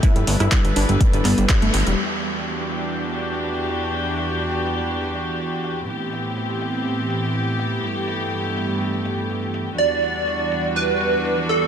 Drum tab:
CC |----------------|x---------------|----------------|----------------|
HH |xxoxxxoxxxoxxxox|xxxxxxxxxxxxxxxx|x-xxxxxxxxxxxxxx|xxxxxxxxxxxxxxxx|
CP |----x-----x-x---|----------------|----------------|----------------|
SD |---r------r-----|----------------|----------------|----------------|
BD |o---o---o---o---|----------------|----------------|----------------|

CC |----------------|----------------|
HH |xxxxxxxxxxxxxxxx|xxxxxxxxxxxxxxxx|
CP |----------------|----------------|
SD |----------------|----------------|
BD |----------------|----------------|